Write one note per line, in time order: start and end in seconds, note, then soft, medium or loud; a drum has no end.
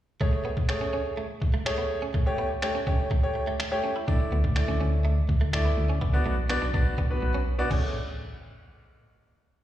0.20 0.48 A3 medium
0.20 0.29 A3 medium
0.20 0.48 G#4 medium
0.20 0.48 C#5 medium
0.20 kick loud
0.33 muted clean electric guitar stroke soft
0.45 0.53 B3 medium
0.57 kick loud
0.69 1.23 A3 medium
0.69 1.23 G#4 medium
0.69 1.24 C#5 medium
0.69 finger snap loud
0.69 muted clean electric guitar stroke soft
0.81 0.89 C#4 medium
0.93 1.01 C#4 medium
1.17 1.25 A3 medium
1.42 muted clean electric guitar stroke soft
1.42 kick medium
1.54 1.62 A3 medium
1.66 2.00 A3 medium
1.66 2.00 G#4 medium
1.66 2.00 C#5 loud
1.66 finger snap loud
1.78 1.86 B3 medium
1.90 muted clean electric guitar stroke soft
2.02 2.10 C#4 medium
2.14 2.22 A3 medium
2.14 kick loud
2.26 2.47 A3 medium
2.26 2.47 G4 medium
2.26 2.47 C#5 loud
2.26 muted clean electric guitar stroke soft
2.38 2.46 B3 medium
2.62 2.76 A3 medium
2.62 2.76 G4 medium
2.62 2.76 C#5 loud
2.62 finger snap loud
2.62 muted clean electric guitar stroke soft
2.75 2.83 C#4 medium
2.87 3.07 A3 medium
2.87 2.95 C#4 medium
2.87 3.07 G4 medium
2.87 3.07 C#5 loud
2.87 kick medium
3.11 3.19 A3 medium
3.11 kick medium
3.23 3.50 A3 medium
3.23 3.50 G4 medium
3.23 3.50 C#5 medium
3.35 muted clean electric guitar stroke soft
3.47 3.55 A3 medium
3.59 finger snap loud
3.59 muted clean electric guitar stroke soft
3.71 3.92 A3 medium
3.71 3.92 G4 medium
3.71 3.92 C#5 loud
3.84 3.91 C#4 medium
3.96 4.04 E4 medium
4.07 4.35 A3 medium
4.07 4.16 D4 medium
4.07 4.35 E4 medium
4.07 4.35 D5 loud
4.07 kick loud
4.20 muted clean electric guitar stroke soft
4.32 4.63 D2 medium
4.32 4.40 B3 medium
4.44 kick loud
4.56 5.10 A3 medium
4.56 5.11 E4 medium
4.56 5.11 D5 medium
4.56 finger snap loud
4.56 muted clean electric guitar stroke soft
4.68 4.79 D2 medium
4.68 4.76 C#4 medium
4.80 5.21 D2 medium
4.80 4.88 C#4 medium
5.05 5.12 A3 medium
5.29 5.70 D2 loud
5.29 muted clean electric guitar stroke soft
5.29 kick medium
5.41 5.49 A3 medium
5.53 5.87 A3 medium
5.53 5.87 E4 medium
5.53 5.87 D5 medium
5.53 finger snap loud
5.65 5.73 B3 medium
5.77 6.18 D2 medium
5.77 muted clean electric guitar stroke soft
5.89 5.97 C#4 medium
6.01 6.09 B3 loud
6.01 kick loud
6.13 6.34 B3 medium
6.13 6.34 F#4 medium
6.13 6.34 D5 loud
6.13 muted clean electric guitar stroke soft
6.26 6.56 B1 medium
6.26 6.33 A3 medium
6.50 6.63 B3 loud
6.50 6.63 F#4 medium
6.50 6.64 D5 loud
6.50 finger snap loud
6.50 muted clean electric guitar stroke soft
6.62 6.72 B1 medium
6.62 6.70 D4 medium
6.74 7.15 B1 medium
6.74 6.94 B3 medium
6.74 6.82 D4 medium
6.74 6.94 F#4 medium
6.74 6.94 D5 loud
6.74 kick medium
6.98 7.06 B3 medium
6.98 kick medium
7.10 7.37 B3 medium
7.10 7.37 F#4 medium
7.10 7.38 B4 medium
7.22 7.63 B1 loud
7.22 muted clean electric guitar stroke soft
7.34 7.42 C#4 medium
7.59 7.71 B3 medium
7.59 7.71 F#4 medium
7.59 7.71 D5 loud
7.71 7.93 A1 medium
7.71 7.93 A3 medium
7.71 7.85 C#4 medium
7.71 7.93 C#5 medium
7.71 kick loud
7.71 crash medium